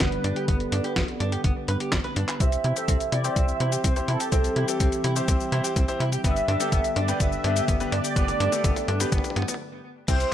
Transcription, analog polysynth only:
0.00 1.89 B4 loud
2.40 3.14 E5 loud
3.12 3.37 D5 loud
3.36 3.86 E5 loud
3.84 4.09 C5 loud
4.08 4.58 A4 medium
4.56 4.79 G4 medium
4.80 5.96 G4 medium
6.24 6.98 E5 loud
6.96 7.21 D5 loud
7.20 7.94 E5 loud
7.92 9.56 D5 loud
10.08 10.34 C5 loud

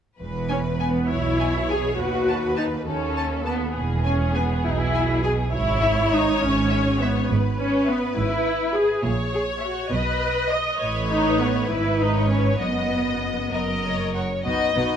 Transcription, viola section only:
0.50 0.58 C#4 soft
0.79 1.09 B3 soft
1.09 1.69 E4 soft
1.69 1.99 G#4 soft
1.99 2.57 F#4 soft
2.57 2.65 D#4 soft
2.87 3.45 C#4 soft
3.47 3.76 B3 soft
4.05 4.33 C#4 soft
4.34 4.64 B3 soft
4.64 4.71 E4 medium
4.71 4.78 D#4 soft
4.78 5.24 E4 medium
5.23 5.31 G#4 soft
5.52 6.10 E4 medium
6.11 6.41 D#4 medium
6.41 6.99 C#4 medium
7.00 7.29 B3 soft
7.58 7.85 C#4 medium
7.88 8.16 B3 soft
8.17 8.73 E4 medium
8.75 9.04 G#4 medium
9.34 9.42 G#4 medium
9.63 9.91 F#4 soft
9.92 10.50 B4 medium
10.51 10.80 D#5 soft
11.10 11.38 D#4 medium
11.40 11.70 B3 soft
11.69 11.99 E4 soft
12.00 12.31 D#4 soft
12.30 12.61 C#4 soft
12.61 13.52 B3 soft
14.45 14.74 B3 soft
14.45 14.74 D#4 soft
14.75 14.97 B3 soft
14.75 14.97 D#4 soft

